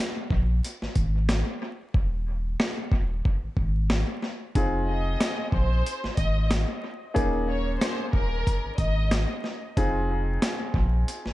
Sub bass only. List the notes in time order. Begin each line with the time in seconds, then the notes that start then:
0.30 A#1
0.82 G#1
0.96 G#1
1.94 D#1
2.92 D#1
3.43 G#1
3.57 G#1
4.55 F1
5.52 A#1
6.04 G#1
6.18 G#1
7.16 D#1
8.13 D#1
8.65 G#1
8.78 G#1
9.77 F1
10.74 A#1
11.26 G#1